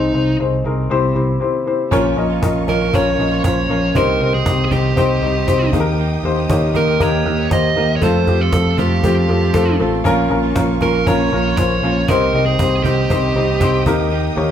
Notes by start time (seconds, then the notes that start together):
Already playing: C3 C4 D#4 G#4 C5
0.13 C2 C4 D#4 G#4 C5
0.39 C4 D#4 G#4 C5
0.64 C2 C4 D#4 G#4 A#4
0.90 C2 C3 C4 E4 G4 C5
1.15 C2 C4 E4 G4 C5
1.40 C4 E4 G4 C5
1.66 C4 E4 G4 C5
1.91 A#1 A#2 F3 A#3 C#4 F4 A#4 C#5 F5 C#6, cajon bass
2.17 A#1 C#4 F4 A#4 D#5, cajon slap
2.30 A#3 C#4 F4
2.42 A#1 C#4 F4 A#4 D#5, cajon bass, cajon slap
2.67 A#1 A#2 F3 A#3 C#4 F4 A#4 D#5, cajon bass
2.93 A#1 F3 A#3 C#4 F4 A#4 C#5, cajon bass
3.19 A#1 C#4 F4 A#4 D#5, cajon slap
3.31 A#3 C#4 F4
3.44 A#1 C#4 F4 A#4 C5 C#5, cajon bass, cajon slap
3.69 A#1 F3 A#3 C#4 F4 A#4 C#5, cajon slap
3.95 C2 C3 D#3 C4 D#4 G4 A#4 C5 G5 D#6, cajon bass
4.20 C2 C4 D#4 G4 C5, cajon slap
4.33 C4 D#4 G4 G#4
4.46 C2 C4 D#4 G4 D#5, cajon bass, cajon slap
4.65 G#4
4.71 C2 C3 D#3 C4 D#4 G4 C5, cajon bass
4.96 C2 D#3 C4 D#4 G4 C5, cajon bass
5.21 C2 C4 D#4 G4 D#5, cajon slap
5.35 C4 D#4 G4
5.47 C2 C4 D#4 G4 C5, cajon bass, cajon slap
5.72 D#2 D#3 A#3 D#4 G4 G#4 A#4, cajon bass
5.80 A#4
5.98 D#3 A#3 D#4 G4, cajon slap
6.23 D#2 A#3 D#4 G4 C5, cajon slap
6.36 A#3 D#4 G4
6.49 D#2 A#3 D#4 G4 C#5, cajon bass, cajon slap
6.74 D#2 D#3 A#3 D#4 G4 A#4, cajon bass
6.99 D#2 D#3 A#3 D#4 G4 A#4 C#5, cajon bass
7.24 D#2 A#3 D#4 G4 A#4, cajon slap
7.37 A#3 D#4 G4
7.50 D#2 A#3 D#4 G4 C5 D#5, cajon bass, cajon slap
7.75 D#2 D#3 A#3 D#4 G4 A#4, cajon slap
7.96 C#5
8.01 F2 F3 A3 C4 F4 A4 C5 F5 C6, cajon bass
8.27 F2 A3 C4 F4 G4, cajon bass, cajon slap
8.40 F3 A3 C4 F4 A4
8.52 F2 A3 C4 F4 A4, cajon bass, cajon slap
8.78 F2 C3 F3 A3 C4 F4 G4 A4, cajon bass
9.03 F2 F3 A3 C4 F4 G4, cajon bass
9.29 F2 A3 C4 F4 A4, cajon slap
9.41 F3 A3 C4 F4, cajon slap
9.53 F2 A3 C4 F4 A4, cajon bass, cajon slap
9.66 cajon slap
9.79 A1 F3 A3 C4 F4 A4, cajon slap
10.04 A#1 A#2 F3 A#3 C#4 F4 A#4 C#6, cajon bass
10.29 A#1 A#3 C#4 F4 A#4, cajon slap
10.43 A#3 C#4 F4
10.55 A#1 A#3 C#4 F4 A#4, cajon bass, cajon slap
10.80 A#1 A#2 F3 A#3 C#4 F4 A#4, cajon bass
11.06 A#1 F3 A#3 C#4 F4 A#4 C#5, cajon bass
11.31 A#1 A#3 C#4 F4 A#4, cajon slap
11.44 A#3 C#4 F4
11.57 A#1 A#3 C#4 F4 C5 C#5, cajon bass, cajon slap
11.83 A#1 F3 A#3 C#4 F4 C#5, cajon slap
12.08 C2 C3 D#3 C4 D#4 G4 A#4 C5 G5 D#6, cajon bass
12.33 C2 C4 D#4 G4 D#5, cajon slap
12.46 C4 D#4 G4 G#4
12.59 C2 C4 D#4 G4 C5, cajon bass, cajon slap
12.83 C2 C3 D#3 C4 D#4 G4 C5, cajon bass
13.09 C2 D#3 C4 D#4 G4 C5, cajon bass
13.35 C2 C4 D#4 G4 D#5, cajon slap
13.48 C4 D#4 G4
13.60 C2 C4 D#4 G4 C5, cajon bass, cajon slap
13.86 D#2 D#3 A#3 D#4 G4 A#4, cajon bass
14.11 D#3 A#3 D#4 G4, cajon slap
14.36 D#2 A#3 D#4 G4 C#5, cajon slap